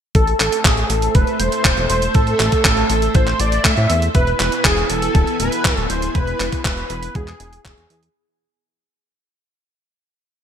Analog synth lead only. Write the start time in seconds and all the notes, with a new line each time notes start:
0.15 A4
0.40 A4
0.65 G#4
0.90 A4
1.15 B4
1.40 C5
1.90 C5
2.15 A4
3.15 C5
3.40 D5
3.65 E5
4.15 B4
4.40 B4
4.65 G#4
4.90 A4
5.40 B4
5.77 A4
5.90 C5
6.15 B4
6.65 B4
7.16 G#4
7.66 G#4